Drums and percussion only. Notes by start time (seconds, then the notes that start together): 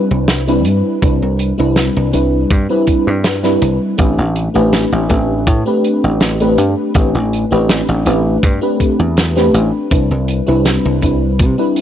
0.28 snare, closed hi-hat
0.48 closed hi-hat
0.65 closed hi-hat
1.02 kick, closed hi-hat
1.39 closed hi-hat
1.76 snare, closed hi-hat
2.13 closed hi-hat
2.50 kick, closed hi-hat
2.87 kick, closed hi-hat
3.24 snare, closed hi-hat
3.43 snare, closed hi-hat
3.62 closed hi-hat
3.98 kick, closed hi-hat
4.36 closed hi-hat
4.73 snare, closed hi-hat
5.09 kick, closed hi-hat
5.47 kick, closed hi-hat
5.84 closed hi-hat
6.21 snare, closed hi-hat
6.40 closed hi-hat
6.58 closed hi-hat
6.94 kick, closed hi-hat
7.33 closed hi-hat
7.69 snare, closed hi-hat
8.06 closed hi-hat
8.43 kick, closed hi-hat
8.80 kick, closed hi-hat
9.17 snare, closed hi-hat
9.37 snare, closed hi-hat
9.54 closed hi-hat
9.91 kick, closed hi-hat
10.28 closed hi-hat
10.65 snare, closed hi-hat
11.02 kick, closed hi-hat
11.39 kick, closed hi-hat
11.76 closed hi-hat